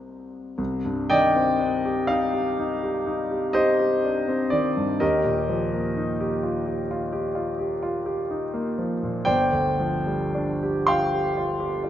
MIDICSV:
0, 0, Header, 1, 2, 480
1, 0, Start_track
1, 0, Key_signature, -3, "minor"
1, 0, Tempo, 1075269
1, 262, Time_signature, 9, 3, 24, 8
1, 491, Tempo, 993377
1, 971, Tempo, 969305
1, 2891, Tempo, 938967
1, 4331, Tempo, 1003344
1, 4811, Tempo, 1086957
1, 5291, Tempo, 953895
1, 5803, End_track
2, 0, Start_track
2, 0, Title_t, "Grand piano"
2, 0, Program_c, 0, 0
2, 0, Control_c, 0, 64, 127
2, 0, Note_on_c, 0, 36, 30
2, 0, Note_on_c, 0, 58, 25
2, 0, Note_on_c, 0, 60, 24
2, 0, Note_on_c, 0, 63, 26
2, 0, Note_on_c, 0, 67, 23
2, 0, Note_on_c, 0, 82, 25
2, 0, Note_on_c, 0, 84, 24
2, 0, Note_on_c, 0, 87, 25
2, 0, Note_on_c, 0, 91, 28
2, 235, Note_off_c, 0, 36, 0
2, 239, Note_off_c, 0, 58, 0
2, 241, Note_off_c, 0, 60, 0
2, 242, Note_off_c, 0, 63, 0
2, 244, Note_off_c, 0, 82, 0
2, 245, Note_off_c, 0, 67, 0
2, 252, Note_off_c, 0, 84, 0
2, 259, Note_off_c, 0, 87, 0
2, 259, Note_on_c, 0, 36, 43
2, 265, Note_off_c, 0, 91, 0
2, 271, Control_c, 0, 64, 0
2, 348, Control_c, 0, 64, 127
2, 379, Note_on_c, 0, 43, 37
2, 489, Note_on_c, 0, 79, 84
2, 491, Note_on_c, 0, 75, 67
2, 493, Note_on_c, 0, 74, 74
2, 497, Note_on_c, 0, 51, 39
2, 565, Note_off_c, 0, 43, 0
2, 617, Note_on_c, 0, 60, 35
2, 687, Note_off_c, 0, 51, 0
2, 729, Note_on_c, 0, 62, 38
2, 806, Note_off_c, 0, 60, 0
2, 855, Note_on_c, 0, 67, 43
2, 922, Note_off_c, 0, 62, 0
2, 951, Note_off_c, 0, 75, 0
2, 953, Note_off_c, 0, 74, 0
2, 962, Note_on_c, 0, 77, 77
2, 970, Note_off_c, 0, 79, 0
2, 971, Note_on_c, 0, 63, 42
2, 1046, Note_off_c, 0, 67, 0
2, 1090, Note_on_c, 0, 67, 35
2, 1166, Note_off_c, 0, 63, 0
2, 1217, Note_on_c, 0, 63, 40
2, 1286, Note_off_c, 0, 67, 0
2, 1337, Note_on_c, 0, 67, 38
2, 1408, Note_off_c, 0, 63, 0
2, 1452, Note_on_c, 0, 63, 40
2, 1527, Note_off_c, 0, 67, 0
2, 1573, Note_on_c, 0, 67, 37
2, 1645, Note_off_c, 0, 63, 0
2, 1681, Note_off_c, 0, 67, 0
2, 1684, Note_on_c, 0, 75, 75
2, 1688, Note_on_c, 0, 67, 58
2, 1690, Note_on_c, 0, 63, 40
2, 1690, Note_on_c, 0, 72, 60
2, 1691, Note_off_c, 0, 77, 0
2, 1806, Note_off_c, 0, 67, 0
2, 1813, Note_on_c, 0, 67, 42
2, 1887, Note_off_c, 0, 63, 0
2, 1935, Note_on_c, 0, 62, 34
2, 2009, Note_off_c, 0, 67, 0
2, 2055, Note_on_c, 0, 60, 42
2, 2129, Note_off_c, 0, 62, 0
2, 2155, Note_off_c, 0, 72, 0
2, 2164, Note_on_c, 0, 74, 66
2, 2172, Note_off_c, 0, 75, 0
2, 2173, Note_on_c, 0, 51, 34
2, 2246, Note_off_c, 0, 60, 0
2, 2296, Note_on_c, 0, 43, 37
2, 2364, Note_off_c, 0, 51, 0
2, 2392, Note_off_c, 0, 36, 0
2, 2407, Note_off_c, 0, 74, 0
2, 2410, Note_on_c, 0, 75, 61
2, 2412, Note_on_c, 0, 70, 55
2, 2413, Note_on_c, 0, 67, 51
2, 2414, Note_off_c, 0, 43, 0
2, 2416, Note_on_c, 0, 39, 48
2, 2422, Control_c, 0, 64, 0
2, 2506, Control_c, 0, 64, 127
2, 2530, Note_on_c, 0, 46, 36
2, 2653, Note_on_c, 0, 53, 38
2, 2723, Note_off_c, 0, 46, 0
2, 2772, Note_on_c, 0, 58, 33
2, 2844, Note_off_c, 0, 53, 0
2, 2889, Note_on_c, 0, 63, 38
2, 2963, Note_off_c, 0, 58, 0
2, 3003, Note_off_c, 0, 67, 0
2, 3011, Note_on_c, 0, 67, 42
2, 3082, Note_off_c, 0, 63, 0
2, 3127, Note_on_c, 0, 65, 35
2, 3200, Note_off_c, 0, 67, 0
2, 3243, Note_on_c, 0, 67, 33
2, 3315, Note_off_c, 0, 65, 0
2, 3371, Note_on_c, 0, 65, 44
2, 3431, Note_off_c, 0, 67, 0
2, 3481, Note_on_c, 0, 67, 38
2, 3554, Note_off_c, 0, 65, 0
2, 3597, Note_on_c, 0, 65, 38
2, 3670, Note_off_c, 0, 67, 0
2, 3719, Note_on_c, 0, 67, 39
2, 3790, Note_off_c, 0, 65, 0
2, 3839, Note_on_c, 0, 65, 44
2, 3913, Note_off_c, 0, 67, 0
2, 3958, Note_on_c, 0, 67, 42
2, 4035, Note_off_c, 0, 65, 0
2, 4084, Note_on_c, 0, 63, 33
2, 4156, Note_off_c, 0, 67, 0
2, 4203, Note_on_c, 0, 58, 41
2, 4281, Note_off_c, 0, 63, 0
2, 4309, Note_off_c, 0, 70, 0
2, 4329, Note_off_c, 0, 75, 0
2, 4330, Note_on_c, 0, 53, 34
2, 4399, Note_off_c, 0, 58, 0
2, 4447, Note_on_c, 0, 46, 36
2, 4518, Note_off_c, 0, 53, 0
2, 4547, Note_off_c, 0, 39, 0
2, 4552, Note_on_c, 0, 79, 80
2, 4554, Note_on_c, 0, 74, 56
2, 4559, Note_on_c, 0, 31, 45
2, 4559, Note_on_c, 0, 72, 56
2, 4565, Note_off_c, 0, 46, 0
2, 4572, Control_c, 0, 64, 0
2, 4662, Control_c, 0, 64, 127
2, 4681, Note_on_c, 0, 38, 37
2, 4813, Note_on_c, 0, 53, 39
2, 4880, Note_off_c, 0, 38, 0
2, 4931, Note_on_c, 0, 55, 31
2, 5004, Note_off_c, 0, 53, 0
2, 5054, Note_on_c, 0, 62, 42
2, 5127, Note_off_c, 0, 55, 0
2, 5181, Note_on_c, 0, 67, 41
2, 5246, Note_off_c, 0, 62, 0
2, 5268, Note_off_c, 0, 74, 0
2, 5270, Note_off_c, 0, 72, 0
2, 5285, Note_off_c, 0, 79, 0
2, 5286, Note_on_c, 0, 84, 75
2, 5291, Note_on_c, 0, 77, 62
2, 5292, Note_on_c, 0, 79, 61
2, 5296, Note_on_c, 0, 65, 44
2, 5372, Note_off_c, 0, 67, 0
2, 5416, Note_on_c, 0, 67, 33
2, 5495, Note_off_c, 0, 65, 0
2, 5538, Note_on_c, 0, 65, 42
2, 5610, Note_off_c, 0, 67, 0
2, 5653, Note_on_c, 0, 67, 41
2, 5726, Note_off_c, 0, 65, 0
2, 5773, Note_on_c, 0, 65, 39
2, 5803, Note_off_c, 0, 31, 0
2, 5803, Note_off_c, 0, 65, 0
2, 5803, Note_off_c, 0, 67, 0
2, 5803, Note_off_c, 0, 77, 0
2, 5803, Note_off_c, 0, 79, 0
2, 5803, Note_off_c, 0, 84, 0
2, 5803, End_track
0, 0, End_of_file